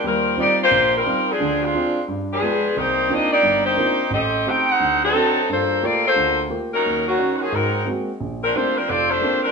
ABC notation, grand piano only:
X:1
M:4/4
L:1/8
Q:"Swing" 1/4=176
K:Bb
V:1 name="Grand piano"
[E,,G,]2 [G,CEF] z B,,,2 [G,CEF] z | [D,,D,]2 [CDF] z G,,2 [_A,=B,FG] z | C,,2 [B,CDEF] z [G,,,G,,]2 [B,CDEF] z | A,,,2 [A,CG] z D,,2 [CDE^F] z |
G,,2 [A,B,FG] z D,,2 [A,B,FG] z | E,,2 [_DE_G] z _A,,2 [_A,B,CG] z | B,,,2 [A,B,CDG] z F,,,2 [A,B,CDG] z |]